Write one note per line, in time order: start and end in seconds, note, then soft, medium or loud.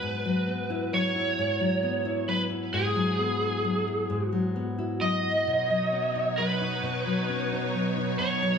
0.00 1.37 G#2 medium
0.00 0.25 F#3 soft
0.00 0.47 B3 soft
0.00 0.13 D#4 soft
0.00 0.94 B4 medium
0.26 0.92 F#3 soft
0.47 1.82 B3 soft
0.70 1.15 E4 soft
0.93 1.60 F#3 soft
0.93 2.28 C#5 medium
1.16 2.04 E4 soft
1.38 2.72 G#2 medium
1.60 2.27 F#3 soft
1.83 3.18 B3 soft
2.05 2.49 E4 soft
2.28 2.95 F#3 soft
2.28 2.41 B4 medium
2.50 3.41 E4 soft
2.74 4.09 G#2 medium
2.74 4.25 G#4 medium
2.96 3.64 F#3 soft
3.19 4.55 B3 soft
3.42 3.86 E4 soft
3.64 4.32 F#3 soft
3.88 4.77 E4 soft
4.10 5.47 G#2 medium
4.25 5.08 F#4 medium
4.32 5.01 F#3 soft
4.56 5.92 B3 soft
4.78 5.22 E4 soft
5.01 5.70 F#3 soft
5.01 6.42 D#5 medium
5.23 5.56 E4 soft
5.47 6.82 B2 medium
5.47 8.58 B2 medium
5.47 8.58 F#3 medium
5.47 8.58 D#4 soft
5.47 8.58 C#5 medium
5.70 6.38 F#3 soft
5.93 7.29 C#4 soft
6.15 6.61 D#4 soft
6.38 7.05 F#3 soft
6.38 8.18 B4 medium
6.61 7.52 D#4 soft
6.83 8.18 B2 medium
7.06 7.74 F#3 soft
7.29 8.58 C#4 soft
7.52 7.97 D#4 soft
7.75 8.41 F#3 soft
7.98 8.58 D#4 soft
8.19 8.58 B2 medium
8.19 8.58 C#5 medium
8.43 8.58 F#3 soft